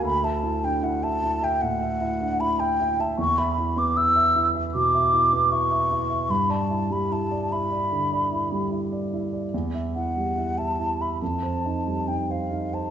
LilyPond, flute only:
\new Staff \with { instrumentName = "Flute" } { \time 4/4 \key g \lydian \tempo 4 = 76 b''16 a''8 g''16 fis''16 a''8 g''16 fis''4 b''16 g''8 a''16 | cis'''16 b''8 d'''16 e'''8. r16 d'''4 cis'''4 | b''16 a''8 b''16 a''8 b''4. r4 | r8 fis''8. a''8 b''16 a''4 g''16 f''8 a''16 | }